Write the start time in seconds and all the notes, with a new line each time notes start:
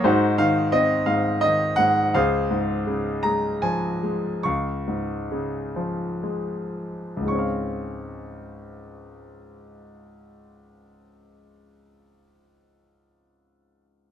0.04 G#2 D#4 F#4 C5
0.38 D#3 F5
0.72 C4 D#5
1.06 G#2 F5
1.41 D#3 D#5
1.76 G#2 F#5
2.14 C#2 G#4 C5 F5
2.51 G#2
2.87 C#3
3.23 G#3 A#5
3.62 F3 G#5
4.03 G#3
4.43 C#2 F5 C#6
4.87 G#2
5.32 C#3
5.76 F3
6.23 G#3
7.17 C#2
7.21 G#2
7.25 G#3 C#6
7.30 C#4
7.35 C4
7.39 F5